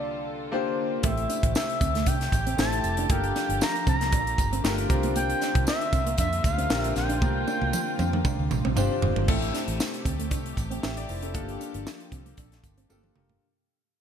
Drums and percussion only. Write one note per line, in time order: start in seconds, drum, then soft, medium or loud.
1.03 kick loud
1.03 closed hi-hat loud
1.17 closed hi-hat soft
1.30 closed hi-hat medium
1.30 tambourine medium
1.43 kick loud
1.43 closed hi-hat medium
1.55 snare loud
1.55 tambourine loud
1.70 closed hi-hat soft
1.81 kick medium
1.81 closed hi-hat medium
1.81 tambourine medium
1.95 snare soft
1.95 closed hi-hat medium
2.06 kick loud
2.06 closed hi-hat medium
2.06 tambourine medium
2.21 snare soft
2.21 closed hi-hat medium
2.32 kick medium
2.32 closed hi-hat medium
2.32 tambourine medium
2.47 closed hi-hat medium
2.58 snare loud
2.58 tambourine medium
2.72 closed hi-hat medium
2.84 closed hi-hat medium
2.84 tambourine soft
2.97 closed hi-hat medium
3.10 kick loud
3.10 closed hi-hat loud
3.10 tambourine soft
3.24 closed hi-hat soft
3.36 snare soft
3.36 closed hi-hat medium
3.36 tambourine medium
3.50 closed hi-hat medium
3.61 snare loud
3.61 tambourine loud
3.76 closed hi-hat soft
3.87 kick medium
3.87 closed hi-hat medium
3.87 tambourine soft
4.01 snare soft
4.01 closed hi-hat medium
4.12 kick loud
4.12 closed hi-hat medium
4.12 tambourine medium
4.27 closed hi-hat medium
4.38 kick medium
4.38 closed hi-hat medium
4.38 tambourine medium
4.53 closed hi-hat medium
4.65 snare loud
4.65 tambourine medium
4.78 closed hi-hat medium
4.90 kick loud
4.90 closed hi-hat medium
4.90 tambourine soft
5.03 closed hi-hat medium
5.16 closed hi-hat loud
5.16 tambourine soft
5.30 closed hi-hat soft
5.41 snare soft
5.41 closed hi-hat medium
5.41 tambourine medium
5.55 kick loud
5.55 closed hi-hat medium
5.67 snare loud
5.67 tambourine loud
5.81 closed hi-hat medium
5.93 kick loud
5.93 closed hi-hat medium
5.93 tambourine medium
6.07 closed hi-hat medium
6.18 kick loud
6.18 closed hi-hat medium
6.18 tambourine medium
6.33 closed hi-hat medium
6.44 kick medium
6.44 closed hi-hat medium
6.44 tambourine medium
6.58 closed hi-hat medium
6.70 snare loud
6.70 tambourine medium
6.84 closed hi-hat medium
6.96 snare soft
6.96 closed hi-hat medium
6.96 tambourine soft
7.09 closed hi-hat medium
7.22 kick loud
7.22 high tom medium
7.22 tambourine soft
7.47 high tom medium
7.47 tambourine medium
7.62 high tom medium
7.73 mid tom medium
7.73 tambourine loud
7.99 mid tom medium
7.99 tambourine soft
8.13 mid tom medium
8.25 kick loud
8.25 mid tom medium
8.25 tambourine medium
8.51 mid tom loud
8.51 tambourine medium
8.65 mid tom medium
8.77 floor tom loud
8.77 tambourine medium
9.02 floor tom loud
9.16 floor tom loud
9.28 kick loud
9.28 crash loud
9.42 closed hi-hat soft
9.54 snare soft
9.54 closed hi-hat medium
9.54 tambourine medium
9.68 closed hi-hat medium
9.80 snare loud
9.80 tambourine loud
9.94 closed hi-hat soft
10.05 kick medium
10.05 closed hi-hat medium
10.05 tambourine soft
10.20 closed hi-hat medium
10.31 kick medium
10.31 closed hi-hat medium
10.31 tambourine soft
10.46 closed hi-hat medium
10.57 kick medium
10.57 closed hi-hat medium
10.57 tambourine medium
10.71 closed hi-hat medium
10.83 snare loud
10.83 tambourine medium
10.97 closed hi-hat medium
11.09 open hi-hat medium
11.09 tambourine soft
11.22 closed hi-hat medium
11.34 kick loud
11.34 closed hi-hat loud
11.49 closed hi-hat soft
11.61 closed hi-hat medium
11.61 tambourine medium
11.74 closed hi-hat medium
11.87 snare loud
11.87 tambourine loud
12.00 closed hi-hat soft
12.12 kick medium
12.12 closed hi-hat medium
12.12 tambourine soft
12.26 closed hi-hat medium
12.37 kick loud
12.37 closed hi-hat medium
12.37 tambourine soft
12.52 snare soft
12.52 closed hi-hat medium
12.64 kick medium
12.64 closed hi-hat medium
12.64 tambourine medium
12.78 closed hi-hat medium
12.90 high tom medium
12.90 tambourine medium
13.04 mid tom medium
13.16 mid tom medium
13.29 floor tom medium